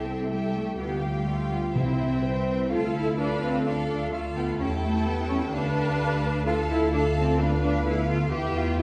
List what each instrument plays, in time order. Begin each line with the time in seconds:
Already playing: double bass section C2, french horn section G3 E4, violin section G4 E5 G5, viola section A4
0.06 cello section C4
0.30 cello section G3, violin section G4 E5 G5
0.54 cello section A3
0.78 double bass section D2, cello section B3, french horn section F4, violin section G4 F5 G5, viola section G4
1.02 cello section G3
1.26 cello section A3, viola section F4
1.51 cello section B3
1.75 double bass section C2, timpani C3, cello section C4, viola section E4, french horn section E4, violin section C5 E5 G5
2.23 violin section B4, viola section C5
2.70 double bass section D2, french horn section A3 F4, cello section F4, viola section A4, violin section A4 F5
2.95 cello section E4
3.18 cello section D4, violin section A4 F5, viola section B4
3.42 cello section C4
3.65 cello section D4, viola section A4, violin section A4 F5
3.89 cello section D4
4.11 cello section A3, viola section F4, violin section A4 F5
4.35 cello section B3, violin section G5
4.58 double bass section E2, cello section C#4, viola section E4, french horn section G4, violin section A4 G5 A5
4.82 cello section A3
5.06 cello section B3
5.28 cello section C#4
5.51 double bass section D2, cello section D4, violin section A4 F5 A5, viola section B4
6.45 french horn section A3 F4, cello section F4, viola section A4, violin section A4 F5 A5
6.69 cello section E4
6.92 cello section D4, violin section A4 F5 A5
7.16 cello section C4
7.39 french horn section B3, cello section D4, violin section B4 F5, viola section B4
7.62 cello section D4
7.86 cello section E4, viola section A4
8.09 cello section F4
8.32 double bass section E2, french horn section E4, cello section G4, viola section G4, violin section B4 E5 G5
8.56 cello section F4
8.79 cello section E4